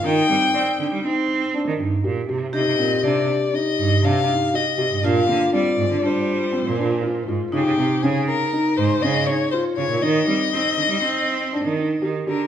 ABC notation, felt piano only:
X:1
M:5/4
L:1/8
Q:1/4=120
K:Eb
V:1 name="Felt piano"
E C d2 E2 D E G G | E C D2 E2 D E G G | D B, C2 D2 C D F F | E C _D2 E2 D E F F |
E C E2 E2 D E G G |]